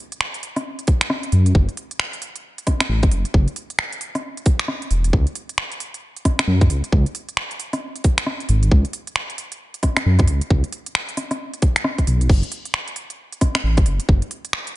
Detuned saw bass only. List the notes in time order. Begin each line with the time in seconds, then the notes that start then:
1.32 F#2
1.55 F#1
2.89 A1
3.12 F#1
3.34 F#1
4.91 E1
5.13 C#2
6.47 F#2
6.70 C#2
6.93 C#2
8.49 G#1
8.72 C#2
10.06 F#2
10.28 C#2
10.50 C#2
12.07 B1
12.30 F#1
13.64 A1
13.86 F#1
14.09 F#1